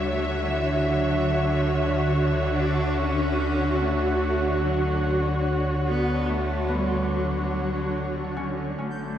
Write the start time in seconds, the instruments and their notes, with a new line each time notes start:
Already playing: sub bass D2, string section D3 F#4 C#5 E5, synth drone D3, cello G3, harp C#4
0.10 cello A3
0.50 cello E3
0.91 cello F#3
1.33 harp C#5 E5
2.56 cello D4
2.97 cello C#4
3.81 cello A3
4.63 cello F#3
5.87 cello B3
6.29 cello A3
6.68 cello G3, harp B3
7.15 cello F#3
8.37 harp C#4
8.78 sub bass A1, string section A3, harp C#4, synth texture G6